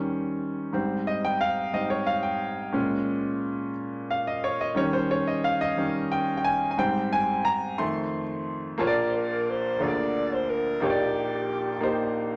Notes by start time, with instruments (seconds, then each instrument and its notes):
Already playing: grand piano D#3 G3 C#4
0.73 grand piano G#2 G3 C4
1.07 grand piano D#5
1.25 grand piano G5
1.41 grand piano F5
1.73 grand piano G#2 G3 C4 D#5
1.90 grand piano C#5
2.07 grand piano F5
2.23 grand piano G5
2.72 grand piano A#2 G#3 C#4
4.11 grand piano F5
4.27 grand piano D#5
4.44 grand piano C#5
4.61 grand piano D#5
4.75 grand piano D#3 G3 C#4 C#5
4.93 grand piano C5
5.11 grand piano C#5
5.27 grand piano D#5
5.44 grand piano F5
5.61 grand piano D#5
5.77 grand piano D#3 G3 C#4
6.12 grand piano G5
6.37 grand piano G5
6.44 grand piano G#5
6.71 grand piano G#5
6.78 grand piano G#2 G3 C4 G5
7.13 grand piano G#5
7.45 grand piano A#5
7.78 grand piano F2 D#3 A3 C6
8.78 grand piano A#1 A#2 A#3 F4 C#5 A5
8.87 grand piano D5
9.09 alto saxophone C5
9.16 alto saxophone A#4
9.50 alto saxophone C5
9.79 grand piano D2 D3 A#3 F4 G#4 C#5
9.83 alto saxophone D5
9.88 grand piano D5
10.33 alto saxophone C5
10.50 alto saxophone A#4
10.80 grand piano A#1 A#2 A#3 D#4 G4 C#5, alto saxophone G4
10.90 grand piano D5
11.81 grand piano A#3 D#4 G4 C5